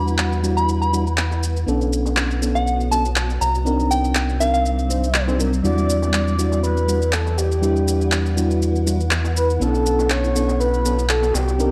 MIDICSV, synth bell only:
0, 0, Header, 1, 2, 480
1, 0, Start_track
1, 0, Key_signature, 1, "minor"
1, 0, Tempo, 495868
1, 1621, Time_signature, 4, 2, 24, 8
1, 11338, End_track
2, 0, Start_track
2, 0, Title_t, "Synth bell"
2, 0, Program_c, 0, 98
2, 0, Note_on_c, 0, 83, 79
2, 113, Note_off_c, 0, 83, 0
2, 550, Note_on_c, 0, 83, 83
2, 765, Note_off_c, 0, 83, 0
2, 790, Note_on_c, 0, 83, 78
2, 1141, Note_off_c, 0, 83, 0
2, 2470, Note_on_c, 0, 78, 84
2, 2631, Note_off_c, 0, 78, 0
2, 2821, Note_on_c, 0, 81, 81
2, 2993, Note_off_c, 0, 81, 0
2, 3303, Note_on_c, 0, 82, 79
2, 3760, Note_off_c, 0, 82, 0
2, 3782, Note_on_c, 0, 79, 82
2, 3953, Note_off_c, 0, 79, 0
2, 4263, Note_on_c, 0, 77, 84
2, 4365, Note_off_c, 0, 77, 0
2, 4391, Note_on_c, 0, 77, 84
2, 5059, Note_off_c, 0, 77, 0
2, 11338, End_track
0, 0, End_of_file